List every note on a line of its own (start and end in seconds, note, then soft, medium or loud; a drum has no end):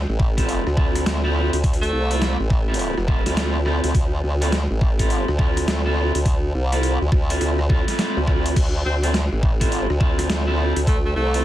0.09 0.64 A1 medium
0.20 kick loud
0.37 0.64 C4 medium
0.37 0.64 E4 medium
0.37 0.64 F4 medium
0.37 0.64 A4 medium
0.37 kick medium
0.37 closed hi-hat medium
0.49 closed hi-hat medium
0.67 1.04 D2 loud
0.67 cross-stick soft
0.77 1.20 C4 medium
0.77 1.20 E4 medium
0.77 1.20 F4 medium
0.77 1.20 A4 medium
0.77 kick loud
0.95 cross-stick medium
0.95 closed hi-hat medium
1.06 1.50 D2 loud
1.06 snare loud
1.06 closed hi-hat medium
1.24 1.33 C4 medium
1.24 1.33 E4 loud
1.24 1.33 F4 medium
1.24 1.33 A4 loud
1.35 1.55 C4 medium
1.35 1.55 E4 medium
1.35 1.55 F4 medium
1.35 1.55 A4 medium
1.53 1.91 D2 medium
1.53 closed hi-hat medium
1.64 kick loud
1.64 closed hi-hat soft
1.73 closed hi-hat soft
1.82 2.40 A3 loud
1.82 closed hi-hat soft
1.93 2.37 C2 loud
2.10 2.37 C4 medium
2.10 2.37 E4 medium
2.10 2.37 F4 medium
2.10 2.37 A4 medium
2.10 closed hi-hat medium
2.22 snare loud
2.22 closed hi-hat medium
2.40 2.95 A1 loud
2.50 kick loud
2.50 cross-stick soft
2.68 2.95 C4 medium
2.68 2.95 E4 medium
2.68 2.95 F4 medium
2.68 2.95 A4 medium
2.74 closed hi-hat medium
2.79 closed hi-hat medium
2.97 3.23 F1 loud
2.97 cross-stick soft
3.08 3.23 C4 medium
3.08 3.23 E4 medium
3.08 3.23 F4 medium
3.08 3.23 A4 medium
3.08 kick loud
3.26 3.81 D2 medium
3.26 3.34 C4 medium
3.26 3.34 E4 medium
3.26 3.34 F4 medium
3.26 3.34 A4 medium
3.26 snare soft
3.26 closed hi-hat medium
3.36 3.57 C4 medium
3.36 3.57 E4 medium
3.36 3.57 F4 medium
3.36 3.57 A4 loud
3.36 snare loud
3.36 closed hi-hat medium
3.65 3.93 C4 medium
3.65 3.93 E4 medium
3.65 3.93 F4 medium
3.65 3.93 A4 medium
3.65 cross-stick soft
3.84 3.93 D2 medium
3.84 closed hi-hat medium
3.95 4.22 D2 loud
3.95 kick loud
3.95 closed hi-hat medium
4.24 4.68 D2 loud
4.41 4.55 C4 medium
4.41 4.55 E4 medium
4.41 4.55 F4 medium
4.41 4.55 A4 medium
4.41 closed hi-hat medium
4.52 snare loud
4.52 closed hi-hat medium
4.71 5.25 A1 loud
4.81 kick loud
4.99 5.25 C4 medium
4.99 5.25 E4 medium
4.99 5.25 F4 medium
4.99 5.25 A4 medium
4.99 kick medium
4.99 closed hi-hat medium
5.10 closed hi-hat medium
5.28 5.66 D2 loud
5.28 cross-stick soft
5.38 5.81 C4 medium
5.38 5.81 E4 medium
5.38 5.81 F4 medium
5.38 5.81 A4 medium
5.38 kick loud
5.57 cross-stick medium
5.57 closed hi-hat medium
5.68 6.12 D2 loud
5.68 snare loud
5.68 closed hi-hat medium
5.85 5.95 C4 medium
5.85 5.95 E4 medium
5.85 5.95 F4 medium
5.85 5.95 A4 loud
5.96 6.16 C4 medium
5.96 6.16 E4 medium
5.96 6.16 F4 medium
5.96 6.16 A4 medium
6.15 6.53 D2 medium
6.15 closed hi-hat medium
6.25 kick loud
6.25 closed hi-hat medium
6.54 6.98 C2 loud
6.72 6.98 C4 medium
6.72 6.98 E4 medium
6.72 6.98 F4 medium
6.72 6.98 A4 medium
6.72 closed hi-hat medium
6.83 closed hi-hat medium
7.01 7.10 D2 loud
7.12 7.39 D2 loud
7.12 kick loud
7.12 cross-stick soft
7.30 7.56 C4 medium
7.30 7.56 E4 medium
7.30 7.56 F4 medium
7.30 7.56 A4 medium
7.30 closed hi-hat medium
7.41 7.85 D2 loud
7.41 closed hi-hat medium
7.59 cross-stick soft
7.69 7.85 C4 medium
7.69 7.85 E4 medium
7.69 7.85 F4 medium
7.69 7.85 A4 medium
7.69 kick loud
7.87 7.96 C4 medium
7.87 7.96 E4 medium
7.87 7.96 F4 medium
7.87 7.96 A4 medium
7.87 snare soft
7.87 closed hi-hat medium
7.98 8.18 C4 medium
7.98 8.18 E4 medium
7.98 8.18 F4 medium
7.98 8.18 A4 loud
7.98 snare loud
7.98 closed hi-hat medium
8.17 8.55 D2 loud
8.27 8.55 C4 medium
8.27 8.55 E4 medium
8.27 8.55 F4 medium
8.27 8.55 A4 medium
8.27 kick medium
8.27 cross-stick soft
8.46 closed hi-hat medium
8.56 8.83 D2 loud
8.56 kick loud
8.56 closed hi-hat medium
8.56 crash medium
8.85 9.29 D2 loud
8.85 8.97 C4 medium
9.03 9.10 C4 medium
9.03 9.17 C4 medium
9.03 9.17 E4 medium
9.03 9.17 F4 medium
9.03 9.17 A4 medium
9.03 closed hi-hat medium
9.14 snare loud
9.14 closed hi-hat medium
9.32 9.87 A1 loud
9.43 kick loud
9.60 9.87 C4 medium
9.60 9.87 E4 medium
9.60 9.87 F4 medium
9.60 9.87 A4 medium
9.60 kick medium
9.60 closed hi-hat medium
9.72 closed hi-hat medium
9.90 10.28 D2 loud
9.90 cross-stick soft
10.00 10.43 C4 medium
10.00 10.43 E4 medium
10.00 10.43 F4 medium
10.00 10.43 A4 medium
10.00 kick loud
10.19 cross-stick medium
10.19 closed hi-hat medium
10.29 10.73 D2 loud
10.29 snare loud
10.29 closed hi-hat medium
10.47 10.57 C4 medium
10.47 10.56 E4 medium
10.47 10.57 F4 medium
10.47 10.57 A4 loud
10.58 10.78 C4 medium
10.58 10.78 E4 medium
10.58 10.78 F4 medium
10.58 10.78 A4 medium
10.76 11.14 D2 loud
10.76 closed hi-hat medium
10.87 10.99 A3 loud
10.87 kick loud
10.87 closed hi-hat medium
11.05 11.12 A3 medium
11.16 11.45 C2 loud
11.16 11.45 A3 loud
11.34 11.45 C4 medium
11.34 11.45 E4 medium
11.34 11.45 F4 medium
11.34 11.45 A4 medium
11.34 closed hi-hat medium